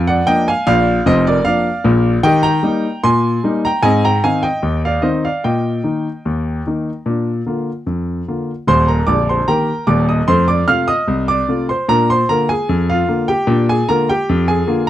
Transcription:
Already playing: F2
0.07 D5 F#5
0.26 F3 A#3 D4 D#5 G5
0.48 F5 G#5
0.67 A#1 A#2 D5 F5
1.06 F1 F2 C5 D#5
1.27 A#4 D5
1.44 F3 A#3 D4 D5 F5
1.84 A#1 A#2
2.23 D#3 G4 D#5 G5
2.43 G5 A#5
2.63 G3 A#3 D#4
3.04 A#2 G#5 C6
3.44 G3 A#3 D#4
3.65 G5 A#5
3.83 G#2 C4 D#5 G#5
4.05 G5 A#5
4.24 D#3 C4 D#4 F5 G#5
4.43 D#5 G5
4.63 D#2
4.85 D5 F5
5.02 D#3 C4 D#4 C5 D#5
5.25 D5 F5
5.44 A#2 D#5 G5
5.84 D#3 A#3 D#4
6.25 D#2
6.67 D#3 A#3 D#4
7.06 A#2 D4
7.46 D3 A#3 F4
7.86 F2
8.28 D3 A#3 F4
8.67 D#1 D#2 C5 C6
8.88 A#4 A#5
9.07 A#0 A#1 D5 D6
9.29 C5 C6
9.47 D#3 A#3 G4 A#4 G5 A#5
9.87 D#1 D#2 D5 D6
10.09 D#5 D#6
10.28 F2 A3 C5 C6
10.48 D5 D6
10.68 C3 A3 F4 F5 F6
10.88 D#5 D#6
11.08 C2
11.28 D5 D6
11.49 C3 A3 F4
11.69 C5 C6
11.88 A#2 D4 A#4 A#5
12.10 C5 C6
12.29 D3 A#3 F4 A#4 A#5
12.49 G#4 G#5
12.69 F2
12.90 F4 F5
13.09 D3 A#3 F4
13.28 G4 G5
13.47 A#2 D4
13.69 G#4 G#5
13.89 D3 A#3 F4 A#4 A#5
14.09 G4 G5
14.29 F2
14.48 G#4 G#5
14.67 D3 A#3 F4

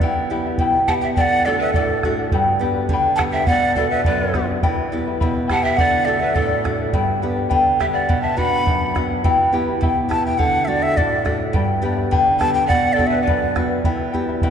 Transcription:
0.00 E3 E4 G4 E5 G5 B5, bombo low
0.30 B3 E4 G4 E5 G5 B5
0.46 E4 E5 B5
0.58 B2 E4 G4 E5 G5 B5, bombo low
0.88 B3 E4 G4 E5 F#5 G5 A5, bombo low
0.92 B5
1.01 E4 E5 G5 B5
1.16 D3 A4 D5 F#5 G5, bombo low
1.21 F#5
1.46 A3 D4 F#4 A4 D5 F#5
1.59 B4 E5 F#5
1.63 D5
1.73 A2 A4 D5, bombo low
1.78 D5 F#5
2.03 A3 D4 F#4 A4 D5 F#5, bombo rim, bombo low
2.19 D5 F#5
2.32 G2 G4 B4 D5 G5 B5, bombo low
2.59 B3 D4 G4 B4 G5
2.64 D5 B5
2.76 B4 D5 B5
2.89 D3 G4, bombo low
2.93 B4 D5 G5 B5
3.16 B3 D4 G4 F#5 A5, bombo rim, bombo low
3.20 B4 D5 G5 B5
3.32 D5 E5 G5 B5
3.37 B4
3.47 B2 B4 D5 F#5, bombo low
3.75 B3 D4 F#4 A4 B4 D5 F#5, bombo low
3.91 B4 D5 E5 F#5
4.05 F#2 B4 D5 F#5, bombo low
4.34 B3 D4 F#4 B4 D5 F#5, bombo rim, bombo low
4.50 D5 F#5
4.63 E3 E4 B4 E5 G5 B5, bombo low
4.91 B3 E4 G4 E5 G5 B5
5.07 E4 E5 B5
5.20 B2 E4 B4 E5 G5 B5, bombo low
5.47 B3 E4 G4 E5 G5 B5, bombo rim, bombo low
5.52 F#5 A5
5.63 E4 E5 G5
5.77 D3 A4 D5 F#5, bombo low
6.05 A3 D4 F#4 A4 D5 F#5
6.20 B4 D5 E5 F#5
6.34 A2 A4 D5 F#5, bombo low
6.63 A3 D4 F#4 A4 D5 F#5, bombo rim, bombo low
6.79 D5 F#5
6.93 G2 G4 B4 D5 G5 B5, bombo low
7.21 B3 D4 G4 B4 D5 G5 B5
7.36 B4 D5 B5
7.49 D3 G4 B4 D5 G5 B5, bombo low
7.79 B3 D4 G4 B4 D5 E5 G5 B5, bombo rim, bombo low
7.93 B4 D5 F#5 B5
8.09 B2 B4 D5 F#5, bombo low
8.22 E5 A5
8.37 B3 D4 F#4 B4 D5 F#5 B5, bombo low
8.52 D5 F#5
8.66 F#2 B4 D5 F#5, bombo low
8.95 B3 D4 F#4 B4 D5 F#5, bombo rim, bombo low
9.10 D5 F#5
9.24 E3 E4 G4 E5 G5 B5, bombo low
9.52 B3 E4 G4 E5 G5 B5
9.67 E4 E5 B5
9.81 B2 E4 G4 E5 G5 B5, bombo low
10.09 B3 E4 G4 E5 G5 A5 B5, bombo rim, bombo low
10.26 E4 E5 G5 B5
10.38 D3 A4 D5 F#5, bombo low
10.65 A3 D4 F#4 A4 D5 E5
10.69 D5 F#5
10.83 D5 E5 F#5
10.97 A2 A4 D5 F#5, bombo low
11.25 A3 D4 F#4 A4 D5 F#5, bombo rim, bombo low
11.41 D5 F#5
11.53 G2 G4 B4 D5 G5 B5, bombo low
11.82 B3 D4 G4 B4 D5 G5 B5
11.97 B4 D5 B5
12.11 D3 G4 B4 D5 G5 B5, bombo low
12.40 B3 D4 G4 B4 D5 G5 A5 B5, bombo rim, bombo low
12.54 B4 D5 G5 B5
12.67 B2 B4 D5 F#5, bombo low
12.93 A4 D5
12.99 B3 D4 F#4 B4 D5 F#5, bombo low
13.07 B4 E5
13.13 D5 F#5
13.23 B4 D5
13.27 F#2 B4 D5 F#5, bombo low
13.55 B3 D4 F#4 B4 D5 F#5, bombo rim, bombo low
13.70 D5 F#5
13.84 E3 E4 B4 E5 G5 B5, bombo low
14.12 B3 E4 G4 E5 G5 B5
14.29 E4 E5 B5
14.42 B2 E4 B4 E5 G5 B5, bombo low

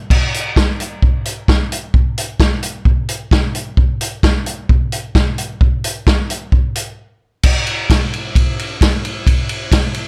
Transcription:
0.10 kick, crash
0.34 closed hi-hat
0.56 kick, snare
0.80 closed hi-hat
1.02 kick
1.25 closed hi-hat
1.48 kick, snare
1.72 closed hi-hat
1.94 kick
2.18 closed hi-hat
2.40 kick, snare
2.63 closed hi-hat
2.85 kick
3.09 closed hi-hat
3.31 kick, snare
3.55 closed hi-hat
3.77 kick
4.01 closed hi-hat
4.23 kick, snare
4.46 closed hi-hat
4.69 kick
4.92 closed hi-hat
5.15 kick, snare
5.38 closed hi-hat
5.61 kick
5.84 closed hi-hat
6.07 kick, snare
6.30 closed hi-hat
6.52 kick
6.75 closed hi-hat
7.43 kick, crash
7.67 ride
7.90 kick, snare, ride
8.14 ride
8.35 kick, ride
8.59 ride
8.81 kick, snare, ride
9.05 ride
9.27 kick, ride
9.49 ride
9.72 kick, snare, ride
9.94 ride

